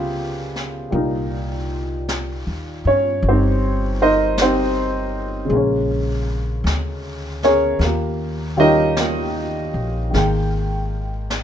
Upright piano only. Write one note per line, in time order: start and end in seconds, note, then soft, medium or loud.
0.00 0.93 C#3 medium
0.00 0.90 G3 soft
0.00 0.94 B3 soft
0.00 1.68 F4 medium
0.00 0.95 G4 medium
0.00 0.95 G#4 medium
0.00 0.95 A#4 medium
0.00 0.95 B4 medium
0.90 5.50 A#2 soft
0.90 5.50 G3 soft
0.90 5.51 A#3 soft
0.95 3.28 D#4 medium
2.87 3.23 C#4 medium
2.87 3.23 C#5 medium
3.29 3.99 C4 medium
3.29 3.99 D#4 medium
3.29 3.99 G4 medium
3.29 3.99 C5 medium
4.02 4.38 D#4 medium
4.02 4.38 A#4 medium
4.02 4.38 C5 medium
4.02 4.38 D#5 medium
4.42 5.13 C4 medium
4.42 5.13 D#4 medium
4.42 5.13 G4 medium
4.42 5.13 C5 medium
5.45 7.78 C#3 soft
5.45 7.80 G#3 soft
5.52 7.81 A#3 soft
5.52 7.43 C#4 medium
7.44 7.81 C#4 medium
7.44 7.81 G#4 medium
7.44 7.81 A#4 medium
7.44 7.81 C#5 medium
7.84 8.57 A#3 soft
7.84 8.56 F4 soft
7.84 8.57 G4 soft
7.84 8.56 A#4 medium
8.57 10.09 D#3 medium
8.57 10.14 G3 medium
8.57 10.14 C#4 medium
8.57 8.97 D#4 medium
8.57 8.99 F4 medium
8.57 8.97 G4 medium
8.57 8.97 A#4 medium
8.57 8.97 D#5 medium
9.00 9.74 A#3 soft
9.00 9.74 F4 soft
9.00 9.74 G4 soft
9.00 9.74 A#4 soft
10.11 11.43 D#3 soft
10.11 11.43 G#3 soft
10.15 11.43 A#3 soft
10.15 11.43 G5 medium